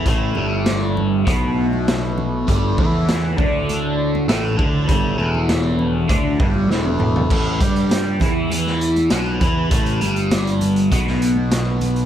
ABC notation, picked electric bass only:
X:1
M:4/4
L:1/8
Q:1/4=100
K:G
V:1 name="Picked electric bass" clef=bass
A,,, G,,,3 B,,,4 | G,,, E,,2 D,,3 A,,, D,, | G,,, E,,,3 D,, G,,, E,,,2 | A,,, G,,2 E,,3 B,,, E,, |
A,,, G,,,3 B,,,4 |]